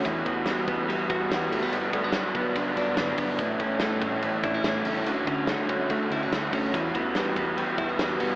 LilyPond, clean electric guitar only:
\new Staff \with { instrumentName = "Clean electric guitar" } { \time 4/4 \key e \dorian \tempo 4 = 144 e8 b8 g8 b8 g8 fis'8 g8 a16 b16 | g,8 a16 b16 fis8 b8 d8 d'8 fis8 b8 | a,8 cis'8 a8 cis'8 e8 d'16 e'16 a8 cis'8 | d8 cis'8 a8 cis'8 a8 e'16 fis'16 a8 cis'8 |
e8 b8 g8 b8 g8 e'16 fis'16 g8 b8 | }